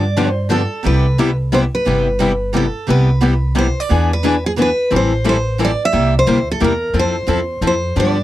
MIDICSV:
0, 0, Header, 1, 4, 480
1, 0, Start_track
1, 0, Key_signature, 0, "major"
1, 0, Tempo, 338983
1, 1194, Time_signature, 3, 2, 24, 8
1, 11661, End_track
2, 0, Start_track
2, 0, Title_t, "Steel-string acoustic guitar"
2, 0, Program_c, 0, 25
2, 0, Note_on_c, 0, 74, 89
2, 431, Note_off_c, 0, 74, 0
2, 431, Note_on_c, 0, 72, 89
2, 656, Note_off_c, 0, 72, 0
2, 730, Note_on_c, 0, 69, 77
2, 1216, Note_off_c, 0, 69, 0
2, 1223, Note_on_c, 0, 71, 77
2, 1926, Note_off_c, 0, 71, 0
2, 2184, Note_on_c, 0, 72, 74
2, 2259, Note_off_c, 0, 72, 0
2, 2473, Note_on_c, 0, 71, 70
2, 3554, Note_off_c, 0, 71, 0
2, 3631, Note_on_c, 0, 69, 75
2, 4062, Note_off_c, 0, 69, 0
2, 4110, Note_on_c, 0, 71, 81
2, 4997, Note_off_c, 0, 71, 0
2, 5077, Note_on_c, 0, 72, 78
2, 5380, Note_off_c, 0, 72, 0
2, 5380, Note_on_c, 0, 74, 76
2, 5833, Note_off_c, 0, 74, 0
2, 5852, Note_on_c, 0, 71, 78
2, 6277, Note_off_c, 0, 71, 0
2, 6319, Note_on_c, 0, 68, 83
2, 6390, Note_off_c, 0, 68, 0
2, 6539, Note_on_c, 0, 71, 81
2, 7001, Note_off_c, 0, 71, 0
2, 7027, Note_on_c, 0, 72, 94
2, 7473, Note_off_c, 0, 72, 0
2, 7490, Note_on_c, 0, 72, 80
2, 7912, Note_off_c, 0, 72, 0
2, 7995, Note_on_c, 0, 74, 92
2, 8253, Note_off_c, 0, 74, 0
2, 8287, Note_on_c, 0, 76, 96
2, 8695, Note_off_c, 0, 76, 0
2, 8763, Note_on_c, 0, 72, 82
2, 9173, Note_off_c, 0, 72, 0
2, 9225, Note_on_c, 0, 69, 84
2, 9390, Note_off_c, 0, 69, 0
2, 9408, Note_on_c, 0, 70, 83
2, 9875, Note_off_c, 0, 70, 0
2, 9904, Note_on_c, 0, 72, 88
2, 10772, Note_off_c, 0, 72, 0
2, 10864, Note_on_c, 0, 72, 80
2, 11319, Note_off_c, 0, 72, 0
2, 11325, Note_on_c, 0, 74, 85
2, 11661, Note_off_c, 0, 74, 0
2, 11661, End_track
3, 0, Start_track
3, 0, Title_t, "Steel-string acoustic guitar"
3, 0, Program_c, 1, 25
3, 239, Note_on_c, 1, 50, 77
3, 246, Note_on_c, 1, 53, 87
3, 248, Note_on_c, 1, 59, 82
3, 252, Note_on_c, 1, 62, 82
3, 259, Note_on_c, 1, 67, 85
3, 389, Note_off_c, 1, 50, 0
3, 393, Note_off_c, 1, 53, 0
3, 394, Note_off_c, 1, 59, 0
3, 396, Note_off_c, 1, 62, 0
3, 399, Note_off_c, 1, 67, 0
3, 705, Note_on_c, 1, 50, 65
3, 712, Note_on_c, 1, 53, 71
3, 714, Note_on_c, 1, 59, 75
3, 716, Note_on_c, 1, 62, 79
3, 720, Note_on_c, 1, 67, 84
3, 863, Note_off_c, 1, 50, 0
3, 866, Note_off_c, 1, 53, 0
3, 867, Note_off_c, 1, 59, 0
3, 868, Note_off_c, 1, 62, 0
3, 870, Note_off_c, 1, 67, 0
3, 1172, Note_on_c, 1, 48, 59
3, 1181, Note_on_c, 1, 55, 54
3, 1190, Note_on_c, 1, 59, 54
3, 1192, Note_on_c, 1, 64, 59
3, 1192, Note_on_c, 1, 67, 63
3, 1473, Note_off_c, 1, 48, 0
3, 1477, Note_off_c, 1, 55, 0
3, 1482, Note_off_c, 1, 59, 0
3, 1483, Note_off_c, 1, 64, 0
3, 1483, Note_off_c, 1, 67, 0
3, 1674, Note_on_c, 1, 48, 69
3, 1685, Note_on_c, 1, 55, 76
3, 1686, Note_on_c, 1, 59, 85
3, 1687, Note_on_c, 1, 64, 78
3, 1700, Note_on_c, 1, 67, 91
3, 1828, Note_off_c, 1, 48, 0
3, 1833, Note_off_c, 1, 55, 0
3, 1834, Note_off_c, 1, 59, 0
3, 1835, Note_off_c, 1, 64, 0
3, 1841, Note_off_c, 1, 67, 0
3, 2153, Note_on_c, 1, 55, 74
3, 2155, Note_on_c, 1, 48, 65
3, 2162, Note_on_c, 1, 59, 77
3, 2162, Note_on_c, 1, 64, 81
3, 2170, Note_on_c, 1, 67, 79
3, 2308, Note_off_c, 1, 55, 0
3, 2309, Note_off_c, 1, 48, 0
3, 2312, Note_off_c, 1, 59, 0
3, 2312, Note_off_c, 1, 64, 0
3, 2316, Note_off_c, 1, 67, 0
3, 2619, Note_on_c, 1, 48, 59
3, 2629, Note_on_c, 1, 59, 62
3, 2632, Note_on_c, 1, 55, 59
3, 2637, Note_on_c, 1, 64, 63
3, 2637, Note_on_c, 1, 67, 60
3, 2917, Note_off_c, 1, 48, 0
3, 2922, Note_off_c, 1, 59, 0
3, 2924, Note_off_c, 1, 55, 0
3, 2926, Note_off_c, 1, 67, 0
3, 2927, Note_off_c, 1, 64, 0
3, 3099, Note_on_c, 1, 55, 82
3, 3103, Note_on_c, 1, 48, 76
3, 3114, Note_on_c, 1, 64, 84
3, 3115, Note_on_c, 1, 59, 78
3, 3119, Note_on_c, 1, 67, 80
3, 3261, Note_off_c, 1, 55, 0
3, 3263, Note_off_c, 1, 48, 0
3, 3269, Note_off_c, 1, 59, 0
3, 3269, Note_off_c, 1, 64, 0
3, 3271, Note_off_c, 1, 67, 0
3, 3578, Note_on_c, 1, 48, 64
3, 3581, Note_on_c, 1, 55, 66
3, 3585, Note_on_c, 1, 59, 69
3, 3592, Note_on_c, 1, 64, 73
3, 3594, Note_on_c, 1, 67, 70
3, 3741, Note_off_c, 1, 48, 0
3, 3743, Note_off_c, 1, 55, 0
3, 3744, Note_off_c, 1, 59, 0
3, 3748, Note_off_c, 1, 64, 0
3, 3749, Note_off_c, 1, 67, 0
3, 4059, Note_on_c, 1, 48, 55
3, 4061, Note_on_c, 1, 55, 55
3, 4071, Note_on_c, 1, 59, 60
3, 4073, Note_on_c, 1, 64, 62
3, 4078, Note_on_c, 1, 67, 58
3, 4358, Note_off_c, 1, 48, 0
3, 4359, Note_off_c, 1, 55, 0
3, 4364, Note_off_c, 1, 59, 0
3, 4365, Note_off_c, 1, 64, 0
3, 4368, Note_off_c, 1, 67, 0
3, 4541, Note_on_c, 1, 48, 77
3, 4546, Note_on_c, 1, 59, 80
3, 4549, Note_on_c, 1, 55, 82
3, 4553, Note_on_c, 1, 64, 79
3, 4554, Note_on_c, 1, 67, 84
3, 4703, Note_off_c, 1, 48, 0
3, 4705, Note_off_c, 1, 59, 0
3, 4707, Note_off_c, 1, 55, 0
3, 4709, Note_off_c, 1, 64, 0
3, 4709, Note_off_c, 1, 67, 0
3, 5025, Note_on_c, 1, 48, 77
3, 5031, Note_on_c, 1, 59, 68
3, 5031, Note_on_c, 1, 64, 73
3, 5033, Note_on_c, 1, 55, 75
3, 5044, Note_on_c, 1, 67, 75
3, 5185, Note_off_c, 1, 48, 0
3, 5188, Note_off_c, 1, 59, 0
3, 5188, Note_off_c, 1, 64, 0
3, 5189, Note_off_c, 1, 55, 0
3, 5194, Note_off_c, 1, 67, 0
3, 5509, Note_on_c, 1, 52, 53
3, 5514, Note_on_c, 1, 59, 65
3, 5521, Note_on_c, 1, 68, 56
3, 5522, Note_on_c, 1, 62, 64
3, 5527, Note_on_c, 1, 71, 61
3, 5803, Note_off_c, 1, 52, 0
3, 5806, Note_off_c, 1, 59, 0
3, 5809, Note_off_c, 1, 68, 0
3, 5810, Note_off_c, 1, 62, 0
3, 5812, Note_off_c, 1, 71, 0
3, 5989, Note_on_c, 1, 52, 74
3, 5992, Note_on_c, 1, 59, 82
3, 5998, Note_on_c, 1, 62, 87
3, 6007, Note_on_c, 1, 68, 80
3, 6009, Note_on_c, 1, 71, 92
3, 6147, Note_off_c, 1, 52, 0
3, 6148, Note_off_c, 1, 59, 0
3, 6151, Note_off_c, 1, 62, 0
3, 6156, Note_off_c, 1, 68, 0
3, 6157, Note_off_c, 1, 71, 0
3, 6462, Note_on_c, 1, 52, 72
3, 6471, Note_on_c, 1, 59, 72
3, 6476, Note_on_c, 1, 62, 73
3, 6483, Note_on_c, 1, 68, 78
3, 6485, Note_on_c, 1, 71, 82
3, 6623, Note_off_c, 1, 52, 0
3, 6628, Note_off_c, 1, 59, 0
3, 6630, Note_off_c, 1, 62, 0
3, 6634, Note_off_c, 1, 68, 0
3, 6635, Note_off_c, 1, 71, 0
3, 6951, Note_on_c, 1, 52, 49
3, 6959, Note_on_c, 1, 55, 60
3, 6961, Note_on_c, 1, 60, 55
3, 6967, Note_on_c, 1, 64, 60
3, 6968, Note_on_c, 1, 69, 68
3, 7244, Note_off_c, 1, 52, 0
3, 7248, Note_off_c, 1, 55, 0
3, 7249, Note_off_c, 1, 60, 0
3, 7252, Note_off_c, 1, 64, 0
3, 7253, Note_off_c, 1, 69, 0
3, 7427, Note_on_c, 1, 52, 72
3, 7433, Note_on_c, 1, 55, 83
3, 7433, Note_on_c, 1, 60, 86
3, 7440, Note_on_c, 1, 64, 86
3, 7442, Note_on_c, 1, 69, 90
3, 7586, Note_off_c, 1, 52, 0
3, 7588, Note_off_c, 1, 55, 0
3, 7589, Note_off_c, 1, 60, 0
3, 7592, Note_off_c, 1, 64, 0
3, 7593, Note_off_c, 1, 69, 0
3, 7907, Note_on_c, 1, 52, 66
3, 7917, Note_on_c, 1, 55, 78
3, 7917, Note_on_c, 1, 60, 71
3, 7926, Note_on_c, 1, 64, 80
3, 7930, Note_on_c, 1, 69, 74
3, 8065, Note_off_c, 1, 52, 0
3, 8070, Note_off_c, 1, 55, 0
3, 8070, Note_off_c, 1, 60, 0
3, 8075, Note_off_c, 1, 64, 0
3, 8077, Note_off_c, 1, 69, 0
3, 8382, Note_on_c, 1, 48, 62
3, 8391, Note_on_c, 1, 58, 61
3, 8393, Note_on_c, 1, 55, 64
3, 8394, Note_on_c, 1, 64, 59
3, 8396, Note_on_c, 1, 67, 64
3, 8679, Note_off_c, 1, 48, 0
3, 8684, Note_off_c, 1, 58, 0
3, 8685, Note_off_c, 1, 55, 0
3, 8685, Note_off_c, 1, 64, 0
3, 8686, Note_off_c, 1, 67, 0
3, 8872, Note_on_c, 1, 48, 85
3, 8875, Note_on_c, 1, 55, 72
3, 8881, Note_on_c, 1, 58, 92
3, 8891, Note_on_c, 1, 64, 88
3, 8895, Note_on_c, 1, 67, 90
3, 9028, Note_off_c, 1, 48, 0
3, 9029, Note_off_c, 1, 55, 0
3, 9032, Note_off_c, 1, 58, 0
3, 9037, Note_off_c, 1, 64, 0
3, 9039, Note_off_c, 1, 67, 0
3, 9348, Note_on_c, 1, 48, 67
3, 9352, Note_on_c, 1, 55, 75
3, 9356, Note_on_c, 1, 58, 71
3, 9363, Note_on_c, 1, 67, 77
3, 9364, Note_on_c, 1, 64, 73
3, 9506, Note_off_c, 1, 48, 0
3, 9508, Note_off_c, 1, 55, 0
3, 9510, Note_off_c, 1, 58, 0
3, 9513, Note_off_c, 1, 67, 0
3, 9514, Note_off_c, 1, 64, 0
3, 9829, Note_on_c, 1, 53, 60
3, 9831, Note_on_c, 1, 60, 56
3, 9837, Note_on_c, 1, 64, 59
3, 9839, Note_on_c, 1, 69, 65
3, 10122, Note_off_c, 1, 53, 0
3, 10123, Note_off_c, 1, 60, 0
3, 10126, Note_off_c, 1, 64, 0
3, 10127, Note_off_c, 1, 69, 0
3, 10290, Note_on_c, 1, 53, 68
3, 10301, Note_on_c, 1, 60, 77
3, 10306, Note_on_c, 1, 64, 89
3, 10310, Note_on_c, 1, 69, 84
3, 10456, Note_off_c, 1, 53, 0
3, 10462, Note_off_c, 1, 60, 0
3, 10464, Note_off_c, 1, 64, 0
3, 10466, Note_off_c, 1, 69, 0
3, 10790, Note_on_c, 1, 53, 68
3, 10792, Note_on_c, 1, 60, 76
3, 10805, Note_on_c, 1, 64, 72
3, 10810, Note_on_c, 1, 69, 75
3, 10946, Note_off_c, 1, 53, 0
3, 10947, Note_off_c, 1, 60, 0
3, 10953, Note_off_c, 1, 64, 0
3, 10956, Note_off_c, 1, 69, 0
3, 11269, Note_on_c, 1, 50, 58
3, 11273, Note_on_c, 1, 53, 55
3, 11287, Note_on_c, 1, 59, 57
3, 11289, Note_on_c, 1, 67, 59
3, 11295, Note_on_c, 1, 62, 72
3, 11562, Note_off_c, 1, 50, 0
3, 11564, Note_off_c, 1, 53, 0
3, 11570, Note_off_c, 1, 59, 0
3, 11571, Note_off_c, 1, 67, 0
3, 11574, Note_off_c, 1, 62, 0
3, 11661, End_track
4, 0, Start_track
4, 0, Title_t, "Upright bass"
4, 0, Program_c, 2, 32
4, 0, Note_on_c, 2, 43, 74
4, 910, Note_off_c, 2, 43, 0
4, 1208, Note_on_c, 2, 36, 69
4, 2355, Note_off_c, 2, 36, 0
4, 2641, Note_on_c, 2, 31, 63
4, 3792, Note_off_c, 2, 31, 0
4, 4081, Note_on_c, 2, 36, 71
4, 5232, Note_off_c, 2, 36, 0
4, 5532, Note_on_c, 2, 40, 74
4, 6678, Note_off_c, 2, 40, 0
4, 6971, Note_on_c, 2, 33, 76
4, 8117, Note_off_c, 2, 33, 0
4, 8403, Note_on_c, 2, 36, 70
4, 8784, Note_off_c, 2, 36, 0
4, 8878, Note_on_c, 2, 38, 69
4, 9285, Note_off_c, 2, 38, 0
4, 9363, Note_on_c, 2, 40, 75
4, 9768, Note_off_c, 2, 40, 0
4, 9820, Note_on_c, 2, 41, 75
4, 10210, Note_off_c, 2, 41, 0
4, 10303, Note_on_c, 2, 40, 69
4, 10715, Note_off_c, 2, 40, 0
4, 10781, Note_on_c, 2, 41, 76
4, 11194, Note_off_c, 2, 41, 0
4, 11274, Note_on_c, 2, 43, 80
4, 11661, Note_off_c, 2, 43, 0
4, 11661, End_track
0, 0, End_of_file